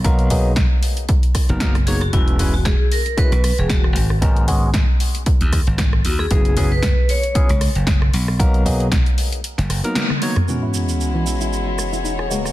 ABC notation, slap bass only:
X:1
M:4/4
L:1/16
Q:"Swing 16ths" 1/4=115
K:B
V:1 name="Slap bass" clef=bass
B,,,4- B,,, z6 F,,,4- F,,, | E,,,4- E,,, z4 B,,, z E,,,3 G,,, z | G,,,4- G,,, z4 D,, z G,,,3 D,, z | F,,,4- F,,, z4 C,, z F,,,3 B,,, z |
B,,,4- B,,, z4 F,,, F,,, z4 z | z16 |]